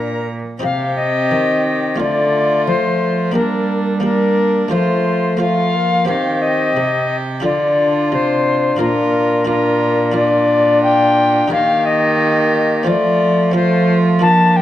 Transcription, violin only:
0, 0, Header, 1, 2, 480
1, 0, Start_track
1, 0, Tempo, 680272
1, 444, Time_signature, 4, 2, 24, 8
1, 10315, End_track
2, 0, Start_track
2, 0, Title_t, "Violin"
2, 0, Program_c, 0, 40
2, 0, Note_on_c, 0, 82, 92
2, 202, Note_off_c, 0, 82, 0
2, 445, Note_on_c, 0, 67, 57
2, 1407, Note_on_c, 0, 65, 55
2, 1418, Note_off_c, 0, 67, 0
2, 2368, Note_off_c, 0, 65, 0
2, 2372, Note_on_c, 0, 62, 61
2, 2841, Note_off_c, 0, 62, 0
2, 2850, Note_on_c, 0, 62, 63
2, 3334, Note_on_c, 0, 65, 54
2, 3345, Note_off_c, 0, 62, 0
2, 3804, Note_off_c, 0, 65, 0
2, 3809, Note_on_c, 0, 65, 56
2, 4282, Note_off_c, 0, 65, 0
2, 4297, Note_on_c, 0, 67, 59
2, 5253, Note_on_c, 0, 65, 56
2, 5264, Note_off_c, 0, 67, 0
2, 6207, Note_off_c, 0, 65, 0
2, 6211, Note_on_c, 0, 65, 62
2, 6679, Note_off_c, 0, 65, 0
2, 6691, Note_on_c, 0, 65, 64
2, 7157, Note_off_c, 0, 65, 0
2, 7168, Note_on_c, 0, 65, 61
2, 8108, Note_off_c, 0, 65, 0
2, 8126, Note_on_c, 0, 67, 66
2, 9084, Note_on_c, 0, 65, 64
2, 9095, Note_off_c, 0, 67, 0
2, 9561, Note_off_c, 0, 65, 0
2, 9565, Note_on_c, 0, 65, 67
2, 10045, Note_on_c, 0, 62, 62
2, 10056, Note_off_c, 0, 65, 0
2, 10315, Note_off_c, 0, 62, 0
2, 10315, End_track
0, 0, End_of_file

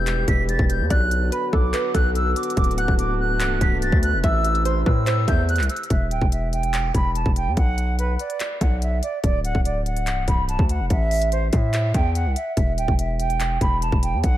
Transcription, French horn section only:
0, 0, Header, 1, 2, 480
1, 0, Start_track
1, 0, Key_signature, 1, "minor"
1, 0, Tempo, 416667
1, 1041, Time_signature, 4, 2, 24, 8
1, 16560, End_track
2, 0, Start_track
2, 0, Title_t, "French horn section"
2, 0, Program_c, 0, 60
2, 0, Note_on_c, 0, 52, 79
2, 0, Note_on_c, 0, 55, 75
2, 0, Note_on_c, 0, 59, 72
2, 0, Note_on_c, 0, 67, 87
2, 1022, Note_off_c, 0, 52, 0
2, 1022, Note_off_c, 0, 55, 0
2, 1022, Note_off_c, 0, 67, 0
2, 1041, Note_on_c, 0, 50, 82
2, 1041, Note_on_c, 0, 66, 89
2, 1042, Note_on_c, 0, 54, 75
2, 2942, Note_off_c, 0, 54, 0
2, 2962, Note_on_c, 0, 57, 75
2, 4836, Note_off_c, 0, 59, 0
2, 4843, Note_off_c, 0, 50, 0
2, 4843, Note_off_c, 0, 66, 0
2, 4880, Note_on_c, 0, 52, 74
2, 4880, Note_on_c, 0, 64, 87
2, 4881, Note_on_c, 0, 48, 84
2, 6763, Note_off_c, 0, 57, 0
2, 6781, Note_off_c, 0, 52, 0
2, 6781, Note_off_c, 0, 64, 0
2, 6782, Note_off_c, 0, 48, 0
2, 16560, End_track
0, 0, End_of_file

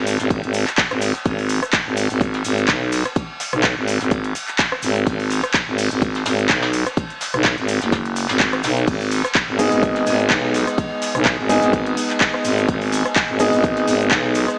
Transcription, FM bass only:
0, 0, Header, 1, 2, 480
1, 0, Start_track
1, 0, Key_signature, 5, "minor"
1, 0, Tempo, 476190
1, 1267, Time_signature, 4, 2, 24, 8
1, 14703, End_track
2, 0, Start_track
2, 0, Title_t, "FM bass"
2, 0, Program_c, 0, 39
2, 0, Note_on_c, 0, 32, 97
2, 178, Note_off_c, 0, 32, 0
2, 198, Note_on_c, 0, 32, 94
2, 289, Note_off_c, 0, 32, 0
2, 306, Note_on_c, 0, 32, 97
2, 417, Note_off_c, 0, 32, 0
2, 436, Note_on_c, 0, 32, 98
2, 657, Note_off_c, 0, 32, 0
2, 917, Note_on_c, 0, 32, 98
2, 1137, Note_off_c, 0, 32, 0
2, 1266, Note_on_c, 0, 32, 97
2, 1617, Note_off_c, 0, 32, 0
2, 1877, Note_on_c, 0, 32, 98
2, 2097, Note_off_c, 0, 32, 0
2, 2119, Note_on_c, 0, 32, 93
2, 2450, Note_off_c, 0, 32, 0
2, 2466, Note_on_c, 0, 32, 97
2, 2689, Note_off_c, 0, 32, 0
2, 2706, Note_on_c, 0, 35, 97
2, 3058, Note_off_c, 0, 35, 0
2, 3559, Note_on_c, 0, 35, 97
2, 3778, Note_off_c, 0, 35, 0
2, 3799, Note_on_c, 0, 32, 97
2, 4018, Note_off_c, 0, 32, 0
2, 4039, Note_on_c, 0, 32, 94
2, 4370, Note_off_c, 0, 32, 0
2, 4865, Note_on_c, 0, 32, 102
2, 5089, Note_off_c, 0, 32, 0
2, 5107, Note_on_c, 0, 32, 97
2, 5458, Note_off_c, 0, 32, 0
2, 5719, Note_on_c, 0, 32, 97
2, 5938, Note_off_c, 0, 32, 0
2, 5960, Note_on_c, 0, 32, 91
2, 6290, Note_off_c, 0, 32, 0
2, 6306, Note_on_c, 0, 32, 98
2, 6529, Note_off_c, 0, 32, 0
2, 6546, Note_on_c, 0, 35, 97
2, 6898, Note_off_c, 0, 35, 0
2, 7399, Note_on_c, 0, 35, 98
2, 7618, Note_off_c, 0, 35, 0
2, 7638, Note_on_c, 0, 32, 97
2, 7858, Note_off_c, 0, 32, 0
2, 7880, Note_on_c, 0, 30, 95
2, 8338, Note_off_c, 0, 30, 0
2, 8359, Note_on_c, 0, 32, 97
2, 8690, Note_off_c, 0, 32, 0
2, 8708, Note_on_c, 0, 35, 95
2, 8930, Note_off_c, 0, 35, 0
2, 8947, Note_on_c, 0, 32, 97
2, 9298, Note_off_c, 0, 32, 0
2, 9559, Note_on_c, 0, 32, 96
2, 9778, Note_off_c, 0, 32, 0
2, 9799, Note_on_c, 0, 32, 93
2, 10130, Note_off_c, 0, 32, 0
2, 10147, Note_on_c, 0, 32, 98
2, 10370, Note_off_c, 0, 32, 0
2, 10387, Note_on_c, 0, 35, 97
2, 10738, Note_off_c, 0, 35, 0
2, 11239, Note_on_c, 0, 35, 101
2, 11458, Note_off_c, 0, 35, 0
2, 11479, Note_on_c, 0, 32, 98
2, 11698, Note_off_c, 0, 32, 0
2, 11718, Note_on_c, 0, 32, 94
2, 12049, Note_off_c, 0, 32, 0
2, 12546, Note_on_c, 0, 32, 100
2, 12769, Note_off_c, 0, 32, 0
2, 12787, Note_on_c, 0, 32, 100
2, 13138, Note_off_c, 0, 32, 0
2, 13399, Note_on_c, 0, 32, 100
2, 13618, Note_off_c, 0, 32, 0
2, 13638, Note_on_c, 0, 32, 94
2, 13969, Note_off_c, 0, 32, 0
2, 13986, Note_on_c, 0, 32, 102
2, 14209, Note_off_c, 0, 32, 0
2, 14227, Note_on_c, 0, 35, 96
2, 14578, Note_off_c, 0, 35, 0
2, 14703, End_track
0, 0, End_of_file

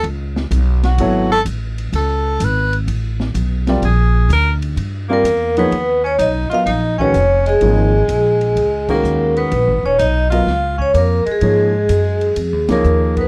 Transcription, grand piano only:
0, 0, Header, 1, 2, 480
1, 0, Start_track
1, 0, Tempo, 474308
1, 43, Time_signature, 4, 2, 24, 8
1, 13437, End_track
2, 0, Start_track
2, 0, Title_t, "Grand piano"
2, 0, Program_c, 0, 0
2, 1009, Note_on_c, 0, 54, 77
2, 1012, Note_on_c, 0, 59, 65
2, 1015, Note_on_c, 0, 69, 69
2, 1016, Note_on_c, 0, 64, 73
2, 1018, Note_on_c, 0, 73, 76
2, 1297, Note_off_c, 0, 54, 0
2, 1298, Note_off_c, 0, 59, 0
2, 1300, Note_off_c, 0, 64, 0
2, 1300, Note_off_c, 0, 69, 0
2, 1301, Note_off_c, 0, 73, 0
2, 3728, Note_on_c, 0, 60, 61
2, 3730, Note_on_c, 0, 55, 81
2, 3735, Note_on_c, 0, 65, 68
2, 3735, Note_on_c, 0, 74, 82
2, 3736, Note_on_c, 0, 70, 62
2, 3861, Note_off_c, 0, 60, 0
2, 3862, Note_off_c, 0, 55, 0
2, 3865, Note_off_c, 0, 65, 0
2, 3865, Note_off_c, 0, 70, 0
2, 3865, Note_off_c, 0, 74, 0
2, 5158, Note_on_c, 0, 55, 70
2, 5161, Note_on_c, 0, 60, 68
2, 5165, Note_on_c, 0, 65, 62
2, 5166, Note_on_c, 0, 70, 60
2, 5169, Note_on_c, 0, 74, 73
2, 5295, Note_off_c, 0, 55, 0
2, 5296, Note_off_c, 0, 60, 0
2, 5298, Note_off_c, 0, 65, 0
2, 5299, Note_off_c, 0, 70, 0
2, 5300, Note_off_c, 0, 74, 0
2, 5640, Note_on_c, 0, 53, 74
2, 5644, Note_on_c, 0, 63, 78
2, 5646, Note_on_c, 0, 58, 73
2, 5646, Note_on_c, 0, 68, 74
2, 5651, Note_on_c, 0, 73, 88
2, 5775, Note_off_c, 0, 53, 0
2, 5777, Note_off_c, 0, 63, 0
2, 5779, Note_off_c, 0, 58, 0
2, 5779, Note_off_c, 0, 68, 0
2, 5781, Note_off_c, 0, 73, 0
2, 6601, Note_on_c, 0, 54, 56
2, 6603, Note_on_c, 0, 59, 63
2, 6605, Note_on_c, 0, 65, 59
2, 6606, Note_on_c, 0, 70, 56
2, 6610, Note_on_c, 0, 75, 63
2, 6736, Note_off_c, 0, 54, 0
2, 6737, Note_off_c, 0, 59, 0
2, 6738, Note_off_c, 0, 65, 0
2, 6738, Note_off_c, 0, 70, 0
2, 6740, Note_off_c, 0, 75, 0
2, 7081, Note_on_c, 0, 51, 70
2, 7085, Note_on_c, 0, 56, 66
2, 7085, Note_on_c, 0, 61, 68
2, 7089, Note_on_c, 0, 66, 70
2, 7090, Note_on_c, 0, 71, 77
2, 7216, Note_off_c, 0, 51, 0
2, 7217, Note_off_c, 0, 56, 0
2, 7217, Note_off_c, 0, 61, 0
2, 7220, Note_off_c, 0, 66, 0
2, 7220, Note_off_c, 0, 71, 0
2, 7707, Note_on_c, 0, 53, 66
2, 7711, Note_on_c, 0, 58, 58
2, 7711, Note_on_c, 0, 63, 55
2, 7713, Note_on_c, 0, 68, 52
2, 7715, Note_on_c, 0, 73, 64
2, 8001, Note_off_c, 0, 53, 0
2, 8003, Note_off_c, 0, 58, 0
2, 8003, Note_off_c, 0, 63, 0
2, 8004, Note_off_c, 0, 68, 0
2, 8005, Note_off_c, 0, 73, 0
2, 8994, Note_on_c, 0, 56, 66
2, 8995, Note_on_c, 0, 51, 71
2, 8995, Note_on_c, 0, 61, 60
2, 8996, Note_on_c, 0, 66, 64
2, 9001, Note_on_c, 0, 70, 71
2, 9598, Note_off_c, 0, 51, 0
2, 9598, Note_off_c, 0, 56, 0
2, 9598, Note_off_c, 0, 61, 0
2, 9599, Note_off_c, 0, 66, 0
2, 9602, Note_off_c, 0, 70, 0
2, 10439, Note_on_c, 0, 54, 60
2, 10443, Note_on_c, 0, 59, 60
2, 10443, Note_on_c, 0, 65, 58
2, 10447, Note_on_c, 0, 70, 61
2, 10451, Note_on_c, 0, 75, 74
2, 10577, Note_off_c, 0, 54, 0
2, 10579, Note_off_c, 0, 59, 0
2, 10579, Note_off_c, 0, 65, 0
2, 10581, Note_off_c, 0, 70, 0
2, 10582, Note_off_c, 0, 75, 0
2, 11556, Note_on_c, 0, 53, 66
2, 11558, Note_on_c, 0, 58, 48
2, 11559, Note_on_c, 0, 63, 49
2, 11563, Note_on_c, 0, 68, 56
2, 11563, Note_on_c, 0, 73, 70
2, 11849, Note_off_c, 0, 53, 0
2, 11850, Note_off_c, 0, 58, 0
2, 11850, Note_off_c, 0, 63, 0
2, 11852, Note_off_c, 0, 68, 0
2, 11852, Note_off_c, 0, 73, 0
2, 12852, Note_on_c, 0, 58, 65
2, 12853, Note_on_c, 0, 53, 69
2, 12855, Note_on_c, 0, 63, 64
2, 12859, Note_on_c, 0, 68, 67
2, 12861, Note_on_c, 0, 73, 75
2, 13437, Note_off_c, 0, 53, 0
2, 13437, Note_off_c, 0, 58, 0
2, 13437, Note_off_c, 0, 63, 0
2, 13437, Note_off_c, 0, 68, 0
2, 13437, Note_off_c, 0, 73, 0
2, 13437, End_track
0, 0, End_of_file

